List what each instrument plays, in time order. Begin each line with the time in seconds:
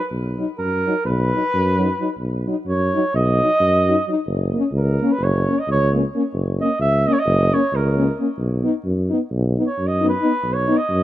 0.11 tuba B1
0.38 euphonium F#3, french horn D#4
0.58 tuba F#2, flugelhorn A#4
0.86 euphonium F#3, french horn D#4
1.05 tuba B1, flugelhorn B4
1.33 euphonium F#3, french horn D#4
1.54 tuba F#2
1.77 euphonium F#3, french horn D#4
2.00 euphonium F#3, french horn D#4
2.18 tuba B1
2.47 euphonium F#3, french horn D#4
2.66 tuba F#2, flugelhorn C#5
2.94 euphonium F#3, french horn D#4
3.14 tuba B1, flugelhorn D#5
3.41 euphonium F#3, french horn D#4
3.60 tuba F#2
3.86 euphonium F#3, french horn D#4
4.07 euphonium F#3, french horn D#4
4.26 tuba F#1
4.52 euphonium A#3
4.58 french horn C#4
4.72 tuba C#2
4.77 flugelhorn A#4
5.01 euphonium A#3, french horn C#4
5.12 flugelhorn B4
5.20 tuba F#1, flugelhorn C#5
5.48 euphonium A#3, french horn C#4
5.59 flugelhorn D#5
5.68 tuba C#2, flugelhorn C#5
5.93 euphonium A#3, french horn C#4
6.14 euphonium A#3, french horn C#4
6.33 tuba F#1
6.59 euphonium A#3, french horn C#4, flugelhorn D#5
6.79 tuba C#2, flugelhorn E5
7.07 euphonium A#3, french horn C#4, flugelhorn D#5
7.13 flugelhorn C#5
7.19 flugelhorn D#5
7.26 tuba F#1
7.53 euphonium A#3, french horn C#4, flugelhorn C#5
7.72 tuba C#2, flugelhorn A#4
7.97 euphonium A#3, french horn C#4
8.19 euphonium A#3, french horn C#4
8.37 tuba B1
8.63 euphonium B3, french horn D#4
8.85 tuba F#2
9.10 euphonium B3, french horn D#4
9.31 tuba B1
9.57 euphonium B3, french horn D#4
9.66 flugelhorn C#5
9.78 tuba F#2
9.87 flugelhorn D#5
10.01 euphonium B3, french horn D#4
10.09 flugelhorn B4
10.21 euphonium B3, french horn D#4
10.43 tuba B1
10.53 flugelhorn C#5
10.68 euphonium B3, french horn D#4
10.77 flugelhorn D#5
10.89 tuba F#2